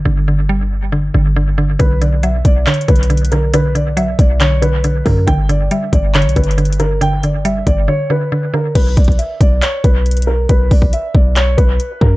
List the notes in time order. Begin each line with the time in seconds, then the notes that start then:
0.05 G1 D3
0.28 D3
0.49 G3
0.92 D3
1.14 G1 D3
1.36 D3
1.58 D3
1.79 B1 D3 B4, kick, closed hi-hat
2.01 D3 D5, closed hi-hat
2.23 F#3 E5, closed hi-hat
2.45 B1 D5, kick, closed hi-hat
2.67 D3 C#5, clap, closed hi-hat
2.74 closed hi-hat
2.81 closed hi-hat
2.88 B1 D3 B4, kick, closed hi-hat
2.96 closed hi-hat
3.03 closed hi-hat
3.10 D3, closed hi-hat
3.17 closed hi-hat
3.25 closed hi-hat
3.32 D3 A#4, closed hi-hat
3.54 D3 B4, closed hi-hat
3.75 D3 D5, closed hi-hat
3.97 F#3 E5, closed hi-hat
4.19 B1 D5, kick, closed hi-hat
4.40 D3 C#5, clap, closed hi-hat
4.62 D3 B4, closed hi-hat
4.84 D3, closed hi-hat
5.05 F#2 D3 A#4, kick, open hi-hat
5.27 G1 D3 G5, kick, closed hi-hat
5.49 D3 D5, closed hi-hat
5.71 G3 E5, closed hi-hat
5.92 G1 D5, kick, closed hi-hat
6.15 D3 C#5, clap, closed hi-hat
6.22 B1, closed hi-hat
6.29 closed hi-hat
6.36 G1 D3 B4, kick, closed hi-hat
6.44 closed hi-hat
6.51 closed hi-hat
6.58 D3, closed hi-hat
6.65 closed hi-hat
6.73 closed hi-hat
6.80 D3 A#4, closed hi-hat
7.01 D3 G5, closed hi-hat
7.23 D3 D5, closed hi-hat
7.45 G3 E5, closed hi-hat
7.67 G1 D5, kick, closed hi-hat
7.88 D3 C#5
8.10 D3 B4
8.32 D3
8.54 D3 A#4
8.75 B1 B4, kick, closed hi-hat, crash
8.97 B1 D5, kick, closed hi-hat
9.04 kick, closed hi-hat
9.12 closed hi-hat
9.19 E5, closed hi-hat
9.41 B1 D5, kick, closed hi-hat
9.62 C#5, clap, closed hi-hat
9.84 B1 B4, kick, closed hi-hat
10.06 closed hi-hat
10.11 closed hi-hat
10.17 closed hi-hat
10.22 closed hi-hat
10.27 A#4
10.49 B1 B4, kick, closed hi-hat
10.71 B1 D5, kick, open hi-hat
10.82 kick
10.93 E5, closed hi-hat
11.14 B1 D5, kick
11.36 C#5, clap, closed hi-hat
11.58 B1 B4, kick, closed hi-hat
11.80 closed hi-hat
12.01 F#2 A#4, kick